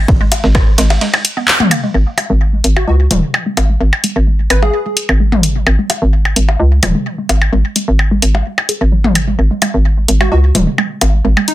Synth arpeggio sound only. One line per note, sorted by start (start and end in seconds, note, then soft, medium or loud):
0.20 0.25 G#3 loud
0.44 0.48 G#3 medium
0.78 0.83 G#3 loud
1.01 1.06 G#3 medium
1.37 1.39 B3 medium
1.60 1.62 B3 medium
1.71 1.74 A#3 loud
1.83 1.88 G#3 medium
1.94 1.99 G#3 medium
2.30 2.34 G#3 medium
2.53 2.57 G#3 medium
2.88 2.92 G#3 medium
3.11 3.15 G#3 medium
3.46 3.50 G#3 loud
3.70 3.74 G#3 medium
4.04 4.08 G#3 loud
4.27 4.32 G#3 medium
4.62 4.67 G#3 medium
4.86 4.90 G#3 medium
5.20 5.25 G#3 medium
5.43 5.48 G#3 medium
5.79 5.83 G#3 medium
6.02 6.06 G#3 medium
6.36 6.41 G#3 loud
6.60 6.64 G#3 medium
6.95 6.99 G#3 medium
7.18 7.22 G#3 medium
7.53 7.57 G#3 medium
7.76 7.80 G#3 medium
8.11 8.15 G#3 loud
8.34 8.39 G#3 medium
8.69 8.72 G#4 medium
8.92 8.94 F#3 medium
9.15 9.20 F#3 medium
9.27 9.29 G#3 medium
9.51 9.55 G#3 medium
9.62 9.66 G#3 medium
10.08 10.13 G#3 medium
10.21 10.25 G#3 loud
10.67 10.71 G#3 medium
10.78 10.83 G#3 medium
11.25 11.29 G#3 medium
11.37 11.41 G#3 medium